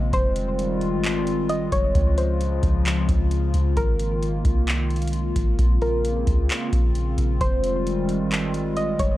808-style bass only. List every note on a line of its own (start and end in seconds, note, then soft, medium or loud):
0.00 0.12 A#1 loud
0.13 0.94 F1 loud
0.93 1.68 G#1 loud
1.72 1.94 F1 loud
1.95 2.61 C#2 loud
2.63 3.07 C#2 loud
3.09 3.52 C#2 loud
3.54 3.76 C#2 loud
3.77 4.42 G#1 loud
4.45 5.32 C2 loud
5.36 5.58 G#1 loud
5.59 6.24 A#1 loud
6.27 6.49 C#2 loud
6.73 7.16 A#1 loud
7.18 7.40 A#1 loud
7.41 8.22 F1 loud
8.20 8.96 G#1 loud
9.00 9.17 F1 loud